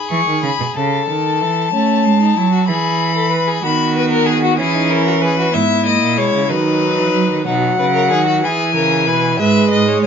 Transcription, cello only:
0.11 0.26 E3 medium
0.27 0.43 D#3 medium
0.43 0.50 C#3 medium
0.60 0.66 B2 medium
0.76 1.08 C#3 medium
1.08 1.42 D#3 medium
1.41 1.73 E3 medium
1.73 2.06 A3 medium
2.05 2.36 G#3 medium
2.37 2.70 F#3 medium
2.68 3.63 E3 medium
3.63 4.60 D#3 medium
4.59 5.56 E3 medium
5.54 6.01 G#2 medium
6.02 6.19 A#2 medium
6.18 6.33 B2 medium
6.34 6.51 C#3 medium
6.50 6.99 D#3 medium
6.98 7.13 E3 medium
7.14 7.30 F#3 medium
7.30 7.46 D#3 medium
7.46 7.77 B2 medium
7.79 8.13 C#3 medium
8.12 8.45 D#3 medium
8.44 8.75 E3 medium
8.76 9.10 C#3 medium
9.08 9.40 B2 medium
9.40 9.71 G#2 medium
9.72 10.03 G#2 medium

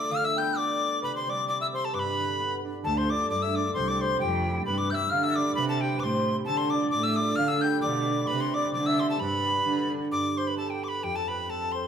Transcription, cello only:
2.84 3.21 D2 medium
3.29 3.66 G2 medium
3.75 4.12 C2 medium
4.20 4.57 F2 medium
4.65 5.02 G2 medium
5.12 5.48 D3 medium
5.57 5.94 C3 loud
6.02 6.39 A2 medium
6.48 6.85 D3 medium
6.93 7.30 A2 medium
7.38 7.75 D3 medium
7.84 8.21 B2 medium
8.30 8.66 C3 medium
8.75 9.12 D3 loud
9.21 9.57 G2 medium
9.66 10.03 D3 medium

